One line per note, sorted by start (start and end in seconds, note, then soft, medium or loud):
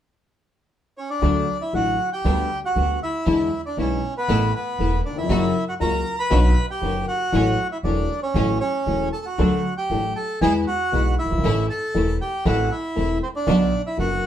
0.98 1.09 C#4 medium
0.98 1.10 C#5 medium
1.10 1.58 D4 medium
1.10 1.62 D5 medium
1.22 1.43 D2 medium
1.22 1.44 D2 medium
1.22 1.43 D3 medium
1.22 1.43 F#3 medium
1.22 1.44 F#3 medium
1.22 1.43 A3 medium
1.22 1.44 A3 medium
1.22 1.44 D4 medium
1.22 1.44 F#4 medium
1.61 1.73 E4 medium
1.61 1.74 E5 medium
1.73 1.95 A1 soft
1.73 1.95 A2 soft
1.73 1.95 D3 soft
1.73 1.95 F#3 soft
1.73 1.95 A3 soft
1.73 1.95 D4 soft
1.73 1.95 F#4 soft
1.73 2.10 F#4 medium
1.73 2.10 F#5 medium
2.13 2.60 G4 medium
2.13 2.60 G5 medium
2.24 2.46 D2 medium
2.24 2.46 D3 medium
2.24 2.46 G3 medium
2.24 2.46 B3 medium
2.24 2.46 D4 medium
2.24 2.46 G4 medium
2.65 3.00 F#4 medium
2.65 3.00 F#5 medium
2.75 2.97 D2 medium
2.75 2.97 D2 soft
2.75 2.97 D3 soft
2.75 2.97 G3 soft
2.75 2.97 B3 soft
2.75 2.97 D4 soft
2.75 2.97 G4 soft
3.03 3.62 E4 medium
3.03 3.61 E5 medium
3.26 3.48 E2 medium
3.26 3.48 D3 medium
3.26 3.48 E3 medium
3.26 3.48 G#3 medium
3.26 3.48 B3 medium
3.26 3.48 D4 medium
3.26 3.48 E4 medium
3.66 3.78 D4 medium
3.66 3.77 D5 medium
3.77 3.98 B1 medium
3.77 3.99 B1 soft
3.77 3.99 B2 soft
3.77 3.98 D3 soft
3.77 3.99 G#3 soft
3.77 3.99 B3 soft
3.77 4.14 C#4 medium
3.77 3.99 D4 soft
3.77 3.99 E4 soft
3.77 4.14 C#5 medium
4.17 4.52 B3 medium
4.17 4.54 B4 medium
4.28 4.49 A1 medium
4.28 4.50 A1 medium
4.28 4.50 A2 medium
4.28 4.49 E3 medium
4.28 4.49 A3 medium
4.28 4.49 B3 medium
4.28 4.50 B3 medium
4.28 4.50 E4 medium
4.28 4.50 A4 medium
4.55 5.02 B3 medium
4.55 5.01 B4 medium
4.79 5.00 E1 soft
4.79 5.00 E2 soft
4.79 5.00 E3 soft
4.79 5.00 A3 soft
4.79 5.00 B3 soft
4.79 5.00 E4 soft
4.79 5.00 A4 soft
5.06 5.17 D4 medium
5.06 5.18 D5 medium
5.11 5.17 D#2 soft
5.17 5.23 E2 medium
5.17 5.65 E4 medium
5.17 5.64 E5 medium
5.23 5.29 F2 medium
5.29 5.50 F#1 medium
5.29 5.51 F#2 medium
5.29 5.51 C#3 medium
5.29 5.51 F#3 medium
5.29 5.50 A#3 medium
5.29 5.51 A#3 medium
5.29 5.50 C#4 medium
5.29 5.51 F#4 medium
5.69 5.74 F#4 medium
5.69 5.74 F#5 medium
5.80 6.01 C#2 soft
5.80 6.01 C#2 medium
5.80 6.01 C#3 soft
5.80 6.01 F#3 soft
5.80 6.01 A#3 soft
5.80 6.01 C#4 soft
5.80 6.01 F#4 soft
5.80 6.02 F#4 soft
5.80 6.16 A#4 medium
5.80 6.19 A#5 medium
6.19 6.66 B4 medium
6.19 6.66 B5 medium
6.30 6.52 B1 medium
6.30 6.52 B2 medium
6.30 6.52 D3 medium
6.30 6.52 B3 medium
6.30 6.52 C#4 medium
6.30 6.52 D4 medium
6.30 6.52 F#4 medium
6.71 7.06 G4 medium
6.71 7.05 G5 medium
6.81 7.03 F#1 soft
6.81 7.03 F#1 medium
6.81 7.03 F#2 soft
6.81 7.03 D3 soft
6.81 7.03 B3 soft
6.81 7.03 C#4 soft
6.81 7.03 D4 soft
6.81 7.03 F#4 soft
7.08 7.68 F#4 medium
7.08 7.67 F#5 medium
7.32 7.54 A1 medium
7.32 7.54 A2 medium
7.32 7.54 E3 medium
7.32 7.54 F#3 medium
7.32 7.54 A3 medium
7.32 7.54 C#4 medium
7.32 7.54 F#4 medium
7.72 7.78 E4 medium
7.72 7.77 E5 medium
7.83 8.05 E1 medium
7.83 8.06 E1 soft
7.83 8.06 E2 soft
7.83 8.06 E3 soft
7.83 8.06 F#3 soft
7.83 8.06 A3 soft
7.83 8.06 C#4 soft
7.83 8.20 D4 medium
7.83 8.06 F#4 soft
7.83 8.20 D5 medium
8.23 8.58 C#4 medium
8.23 8.58 C#5 medium
8.34 8.56 A1 medium
8.34 8.57 A1 medium
8.34 8.57 A2 medium
8.34 8.57 E3 medium
8.34 8.57 F#3 medium
8.34 8.57 A3 medium
8.34 8.57 C#4 medium
8.34 8.57 F#4 medium
8.60 9.09 C#4 medium
8.60 9.09 C#5 medium
8.86 9.08 E1 soft
8.86 9.09 E1 soft
8.86 9.08 E2 soft
8.86 9.08 E3 soft
8.86 9.08 F#3 soft
8.86 9.08 A3 soft
8.86 9.08 C#4 soft
8.86 9.09 C#4 soft
8.86 9.09 F#4 soft
9.13 9.25 A4 medium
9.13 9.26 A5 medium
9.26 9.74 F#4 medium
9.26 9.74 F#5 medium
9.38 9.60 D2 medium
9.38 9.60 D3 medium
9.38 9.60 F#3 medium
9.38 9.60 A3 medium
9.38 9.60 D4 medium
9.38 9.61 A4 medium
9.78 10.13 G4 medium
9.78 10.17 G5 medium
9.90 10.11 A1 medium
9.90 10.12 A1 soft
9.90 10.12 A2 soft
9.90 10.12 F#3 soft
9.90 10.12 A3 soft
9.90 10.12 D4 soft
9.90 10.12 A4 soft
10.16 10.40 A4 medium
10.16 10.40 A5 medium
10.41 10.63 E2 medium
10.41 10.63 E3 medium
10.41 10.63 G#3 medium
10.41 10.63 B3 medium
10.41 10.63 E4 medium
10.41 10.53 G#4 medium
10.41 10.63 G#4 medium
10.41 10.53 G#5 medium
10.67 11.15 F#4 medium
10.67 11.15 F#5 medium
10.92 11.14 B1 soft
10.92 11.14 B2 soft
10.92 11.14 E3 soft
10.92 11.14 G#3 soft
10.92 11.14 B3 soft
10.92 11.15 E4 soft
10.92 11.14 G#4 soft
11.19 11.67 E4 medium
11.19 11.66 E5 medium
11.24 11.31 F#1 soft
11.24 11.30 F#1 soft
11.31 11.37 G1 medium
11.38 11.43 G#1 medium
11.38 11.44 G#1 medium
11.44 11.65 A1 medium
11.44 11.66 A1 medium
11.44 11.65 A2 medium
11.44 11.65 E3 medium
11.44 11.65 A3 medium
11.44 11.65 C#4 medium
11.44 11.66 C#4 medium
11.44 11.66 E4 medium
11.44 11.66 A4 medium
11.70 12.17 A4 medium
11.70 12.17 A5 medium
11.94 12.16 E1 soft
11.94 12.16 E1 medium
11.94 12.16 E2 soft
11.94 12.16 E3 soft
11.94 12.16 A3 soft
11.94 12.16 C#4 soft
11.94 12.16 E4 soft
11.94 12.16 A4 soft
12.21 12.45 G4 medium
12.21 12.44 G5 medium
12.45 12.67 A1 medium
12.45 12.67 A2 medium
12.45 12.67 E3 medium
12.45 12.67 A3 medium
12.45 12.67 C4 medium
12.45 12.67 E4 medium
12.45 12.70 F#4 medium
12.45 12.67 A4 medium
12.45 12.72 F#5 medium
12.71 13.18 E4 medium
12.71 13.19 E5 medium
12.95 13.17 E1 soft
12.95 13.18 E1 medium
12.95 13.18 E2 soft
12.95 13.17 E3 soft
12.95 13.17 A3 soft
12.95 13.18 A3 soft
12.95 13.18 C4 soft
12.95 13.18 E4 soft
12.95 13.18 A4 soft
13.23 13.28 C4 medium
13.23 13.28 C5 medium
13.36 13.82 D4 medium
13.36 13.82 D5 medium
13.47 13.68 B1 medium
13.47 13.68 B2 medium
13.47 13.68 D3 medium
13.47 13.68 F#3 medium
13.47 13.68 B3 medium
13.47 13.68 D4 medium
13.47 13.68 F#4 medium
13.87 13.98 E4 medium
13.87 13.97 E5 medium
13.97 14.19 F#1 medium
13.97 14.19 F#2 soft
13.97 14.19 D3 soft
13.97 14.19 F#3 soft
13.97 14.19 B3 soft
13.97 14.19 D4 soft
13.97 14.19 F#4 soft
13.97 14.27 F#4 medium
13.97 14.27 F#5 medium